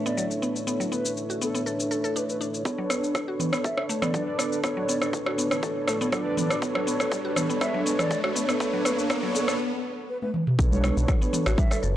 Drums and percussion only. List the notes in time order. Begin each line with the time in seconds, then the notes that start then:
0.06 shaker
0.18 shaker
0.31 shaker
0.43 shaker
0.56 shaker
0.67 shaker
0.81 shaker
0.92 shaker
1.05 shaker
1.17 shaker
1.30 shaker
1.42 shaker
1.55 shaker
1.67 shaker
1.80 shaker
1.92 shaker
2.05 shaker
2.16 shaker
2.29 shaker
2.41 shaker
2.54 shaker
2.65 kick, shaker
2.90 cross-stick, shaker
3.04 shaker
3.15 kick, cross-stick, shaker
3.40 mid tom, shaker
3.53 cross-stick, shaker
3.64 kick, shaker
3.78 cross-stick
3.90 shaker
4.02 cross-stick, mid tom, shaker
4.14 kick, shaker
4.39 cross-stick, shaker
4.53 shaker
4.64 kick, cross-stick, shaker
4.89 shaker
5.02 cross-stick, shaker
5.13 kick, shaker
5.26 cross-stick
5.39 shaker
5.51 cross-stick, shaker
5.63 kick, shaker
5.88 cross-stick, shaker
6.01 shaker
6.12 kick, cross-stick, shaker
6.37 mid tom, shaker
6.50 cross-stick, shaker
6.62 kick, shaker
6.75 cross-stick
6.87 shaker
7.00 cross-stick, shaker
7.12 kick, shaker
7.36 cross-stick, mid tom, shaker
7.50 shaker
7.61 kick, cross-stick, shaker
7.86 shaker
7.99 cross-stick, mid tom, shaker
8.11 kick, shaker
8.24 cross-stick
8.36 shaker
8.49 cross-stick, shaker
8.60 kick, shaker
8.85 cross-stick, shaker
8.99 shaker
9.10 kick, cross-stick, shaker
9.35 shaker
9.48 cross-stick, shaker
10.22 high tom
10.34 mid tom
10.47 mid tom
10.59 kick, shaker
10.72 high conga, shaker
10.84 cross-stick, shaker
10.97 shaker
11.08 kick, cross-stick, shaker
11.22 shaker
11.33 mid tom, shaker
11.46 cross-stick, shaker
11.58 kick, high conga, shaker
11.71 cross-stick, shaker
11.83 shaker